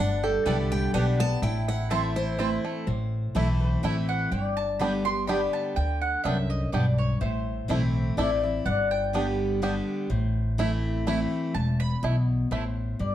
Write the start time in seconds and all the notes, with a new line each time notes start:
Already playing: G1 D4 F#5
0.00 G2
0.24 G4 A4
0.45 C2 D3 G3 B3 E4 G4 A4 D5 G5
0.72 G4 G5
0.94 B1 D3 G3 B3 D4 G4 D5 F#5 G5
1.20 B3 G4 A5
1.42 A1 A2 E4 G5
1.68 E4 F#5
1.90 E3 A3 C4 E4 A4 C5 E5 A5
2.16 E4 C5
2.38 E3 A3 C4 E4 C5 A5
2.65 A3
2.87 A1 A2 C5
3.35 B1 E3 A3 C4 E4 A4
3.60 C5
3.83 A1 E3 A3 C4 E4 E5
4.09 F#5
4.31 G1 G2 D5 G5
4.57 A5
4.79 D3 G3 B3 D4 G4 B5
5.05 B3 G4 C6
5.27 D3 G3 B3 D4 G4 D5 B5
5.53 A5
5.76 D2 D3 G5
6.01 F#5
6.24 C2 F#2 B3 D4 G4 E5
6.50 D#5
6.72 B1 G2 B3 D4 G4 D5
6.98 C#5
7.21 A1 A2 C5 E5
7.68 B1 E3 A3 C4 E4 C5
8.17 A1 E3 A3 C4 E4 D5
8.43 C4 E4 E5
8.66 G1 G2 D5 F#5
8.91 G5
9.13 D3 G3 B3 D4 G4
9.62 D3 G3 B3 D4 G4
10.10 A1 A2 C5
10.58 E3 A3 C4 E4
11.06 E3 A3 C4 E4 E5
11.55 E1 E2 A5
11.80 B5
12.03 B1 B2 A3 E4
12.51 A1 A2 A3 E4 C5
12.99 G1 G2 D5